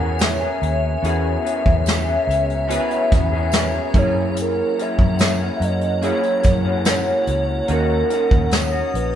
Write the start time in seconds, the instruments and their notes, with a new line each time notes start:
Already playing: fingered electric bass E2, synth keys B3 C#4 F#4 A#4, clean electric guitar G#4, ambient pad C#5 G#5, soft synth lead F#5
0.00 clean electric guitar E3 B3 C#4
0.19 snare, closed hi-hat, tambourine
0.24 soft synth lead E5
0.40 clean electric guitar B3 C#4 G#4
0.62 fingered electric bass D#2, closed hi-hat
1.02 fingered electric bass E2, clean electric guitar E3 B3 C#4 G#4, synth keys B3 C#4 F#4 G#4, ambient pad A#5, closed hi-hat
1.07 soft synth lead E5
1.43 clean electric guitar E3 B3 C#4 G#4, closed hi-hat
1.66 fingered electric bass E2, kick
1.86 snare, closed hi-hat, tambourine
2.05 clean electric guitar B3 C#4 G#4
2.27 fingered electric bass C#2, closed hi-hat
2.50 closed hi-hat
2.67 clean electric guitar E3 B3 C#4 G#4, synth keys B3 C#4 F#4 B4, closed hi-hat
2.90 closed hi-hat
3.12 fingered electric bass E2, kick, snare, closed hi-hat
3.31 clean electric guitar E3 B3 C#4 G#4
3.52 snare, closed hi-hat, tambourine
3.72 clean electric guitar B3 C#4 G#4
3.93 clean electric guitar F#2 E3 A#3 C#4, fingered electric bass F#2, synth keys A#3 C#4 E4 G#4, ambient pad F#5, kick, closed hi-hat
3.98 soft synth lead C#5
4.36 closed hi-hat
4.41 soft synth lead A#4
4.77 clean electric guitar F#2 E3 A#3 C#4, closed hi-hat
4.82 soft synth lead E5
4.99 fingered electric bass F#2, kick
5.19 snare, closed hi-hat, tambourine
5.40 clean electric guitar E3 A#3 C#4
5.57 fingered electric bass F#2, soft synth lead E5
5.62 soft synth lead D#5, closed hi-hat
5.81 closed hi-hat
6.01 clean electric guitar F#2 E3 A#3 C#4, synth keys A#3 C#4 E4 G#4, closed hi-hat
6.06 soft synth lead C#5
6.23 closed hi-hat
6.43 fingered electric bass F#2, kick, snare, closed hi-hat
6.64 clean electric guitar F#2 E3 A#3 C#4
6.85 snare, closed hi-hat, tambourine
6.90 soft synth lead C#5
7.05 clean electric guitar E3 A#3 C#4
7.27 fingered electric bass C#2, closed hi-hat
7.68 fingered electric bass D#2, clean electric guitar D#3 A#3 C#4 F#4, synth keys A#3 C#4 D#4 F#4, closed hi-hat
7.72 soft synth lead A#4, ambient pad C#5 D#6
8.10 clean electric guitar D#3 A#3 C#4 F#4, closed hi-hat
8.31 fingered electric bass D#2, kick
8.51 soft synth lead C#5, snare, closed hi-hat, tambourine
8.71 clean electric guitar C#4 F#4
8.94 fingered electric bass A#1, soft synth lead B4, closed hi-hat